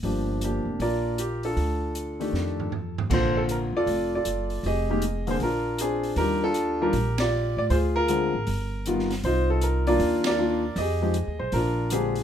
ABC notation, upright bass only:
X:1
M:4/4
L:1/8
Q:"Swing" 1/4=157
K:Gm
V:1 name="Upright bass" clef=bass
G,,,3 F,,, B,,,4 | D,,4 F,,4 | [K:Bb] B,,,3 F,, F,,,2 _G,,,2 | F,,,4 B,,,4 |
E,,4 B,,,3 A,, | D,,3 A,,, G,,,4 | C,,4 E,,4 | F,,2- (3F,, E,, _C,, B,,,4 |]